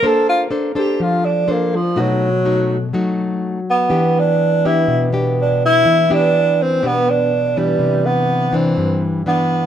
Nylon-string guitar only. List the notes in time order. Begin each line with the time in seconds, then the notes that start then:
0.03 A#3 D4 A4 C5
0.51 D4 A4 C5
0.75 D4 A4 C5
1.00 F3
1.48 D4 A4 C5
1.96 B2 A3 D#4 F#4
2.45 A3 D#4 F#4
2.93 F#3 A3 D#4 F#4
3.89 E3 B3 D4 G4
4.65 B3 D4 G4
4.88 B2
5.13 B3 D4 G4
5.85 E3
6.10 B3 D4 G4
6.82 B2 B3 D4 G4
7.57 E3 B3 D4
7.79 C3
8.53 E3 D4
8.77 G2
9.26 E3 B3 D4